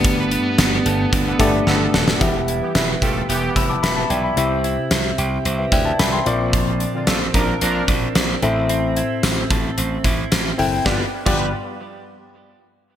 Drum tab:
CC |----------------|----------------|----------------|----------------|
HH |x-x-x-x-x-x-----|x-x-x-x-x-x-x-x-|x-x-x-x-x-x-x-x-|x-x-x-x-x-x-x-x-|
TB |----x-----------|----------------|----------------|----------------|
SD |----o-------o-oo|----o-------o---|----o-------o---|----o-------o---|
BD |o-------o-o-----|o-----o---o-----|----------o-----|o-----o---o-----|

CC |----------------|---x------------|
HH |x-x-x-x-x-x-x-o-|----------------|
TB |----x-------x---|----------------|
SD |----o-------o---|o---------------|
BD |------o---o-----|o--o------------|